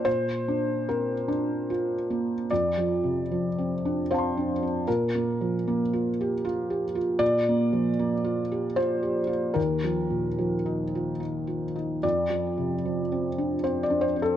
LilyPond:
\new Staff \with { instrumentName = "Felt piano" } { \time 3/4 \key bes \major \tempo 4 = 75 << { c''4 bes'4 r4 | d''2 <c'' f'' a'' c'''>4 | bes'2~ bes'8 r8 | d''2 c''4 |
bes'2 r4 | d''2 c''16 d''16 c''16 a'16 | } \\ { bes,8 d'8 c'8 d'8 f'8 bes8 | \tuplet 3/2 { f,8 f8 c8 f8 c'8 d'8 c'8 d'8 c'8 } | \tuplet 3/2 { bes,8 bes8 f8 bes8 f'8 g'8 f'8 g'8 f'8 } | \tuplet 3/2 { bes,8 bes8 f8 bes8 f'8 g'8 f'8 g'8 f'8 } |
\tuplet 3/2 { ees,8 f8 bes,8 f8 ees'8 f'8 ees'8 f'8 ees'8 } | \tuplet 3/2 { f,8 f8 c8 f8 c'8 d'8 c'8 d'8 c'8 } | } >> }